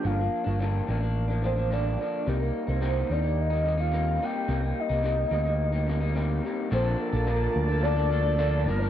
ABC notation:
X:1
M:4/4
L:1/16
Q:1/4=108
K:Bb
V:1 name="Soft synth lead"
f4 z6 c2 d4 | B3 c3 d2 e3 f3 g2- | g2 e12 z2 | c2 B6 d2 d4- d B |]
V:2 name="Woodwind section"
z16 | z16 | z16 | [B,da]12- [B,da]2 [G,FB]2 |]
V:3 name="Clean electric guitar"
[G,,D,F,B,D] [F,B,D]2 [F,B,D] [G,,D,F,B,D]2 [D,F,B,D] [F,B,D]2 [F,B,D] [D,F,B,D] [F,B,D] [G,,D,F,B,D]2 [D,F,B,D]2 | [C,G,B,E] [G,B,E]2 [G,B,E] [C,G,B,E]2 [C,G,B,E] [G,B,E]2 [G,B,E] [C,G,B,E] [G,B,E] [C,G,B,E]2 [C,G,B,E]2 | [C,G,B,E] [G,B,E]2 [G,B,E] [C,G,B,E] [G,B,E] [C,G,B,E] [G,B,E]2 [G,B,E] [C,G,B,E] [G,B,E] [C,G,B,E]2 [C,G,B,E]2 | [B,,D,F,B,DA]3 [F,B,DA] [B,,D,F,B,D]3 [F,B,DA] [F,B,DA] [F,B,DA] [F,B,DA] [F,B,DA] [B,,D,F,B,DA]2 [F,B,DB] [F,B,DB] |]
V:4 name="Picked electric bass" clef=bass
G,,,2 z G,,,3 A,,,8 z2 | C,,2 z C,,3 E,,8 z2 | C,,2 z C,,3 D,,8 z2 | B,,,2 z B,,,3 D,,8 G,,,2 |]